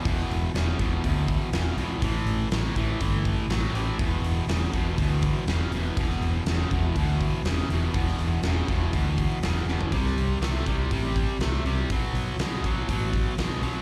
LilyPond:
<<
  \new Staff \with { instrumentName = "Distorted electric guitar" } { \clef bass \time 4/4 \key e \minor \tempo 4 = 122 <e, b,>4 <e, cis>8 <e, b,>8 <e, b,>4 <e, cis>8 <e, b,>8 | <a, e>4 <a, fis>8 <a, e>8 <a, e>4 <a, fis>8 <a, e>8 | <e, b,>4 <e, cis>8 <e, b,>8 <e, b,>4 <e, cis>8 <e, b,>8 | <e, b,>4 <e, cis>8 <e, b,>8 <e, b,>4 <e, cis>8 <e, b,>8 |
<e, b,>4 <e, cis>8 <e, b,>8 <e, b,>4 <e, cis>8 <e, b,>8 | <c g>4 <c a>8 <c g>8 <c g>4 <c a>8 <c g>8 | <b, fis>4 <b, gis>8 <b, fis>8 <b, fis>4 <b, gis>8 <b, fis>8 | }
  \new Staff \with { instrumentName = "Fingered electric bass" } { \clef bass \time 4/4 \key e \minor e,,8 e,,8 e,,8 e,,8 d,4 e,,8 b,,8 | a,,8 a,,8 a,,8 a,,8 g,,4 a,,8 a,,8 | e,,8 e,,8 e,,8 e,,8 d,4 e,,8 e,,8 | e,,8 e,,8 e,,8 e,,8 d,4 e,,8 e,,8 |
e,,8 e,,8 e,,8 e,,8 d,4 e,,8 e,,8 | c,8 c,8 c,8 c,8 a,,4 c,8 c,8 | b,,8 b,,8 b,,8 b,,8 a,,4 b,,8 b,,8 | }
  \new DrumStaff \with { instrumentName = "Drums" } \drummode { \time 4/4 <hho bd>16 sn16 hho8 <hho sn>8 <hho bd>8 <hho bd>8 <hho bd>8 <hho sn>8 hho8 | <hho bd>8 hho8 <hho sn>8 <hho bd>8 <hho bd>8 <hho bd>8 <hho sn>8 hho8 | <hho bd>8 hho8 <hho sn>8 <hho bd>8 <hho bd>8 <hho bd>8 <hho sn>8 hho8 | <hho bd>16 sn16 hho8 <hho sn>8 <hho bd>8 <hho bd>8 <hho bd>8 <hho sn>8 hho8 |
<hho bd>16 sn16 hho8 <hho sn>8 <hho bd>8 <hho bd>8 <hho bd>8 <hho sn>8 sn16 tomfh16 | <hho bd>16 sn16 hho8 <hho sn>8 <hho bd>8 <hho bd>8 <hho bd>8 <hho sn>16 sn16 hho8 | <hho bd>8 hho8 <hho sn>8 <hho bd>8 <hho bd>8 <hho bd>8 <hho sn>8 hho8 | }
>>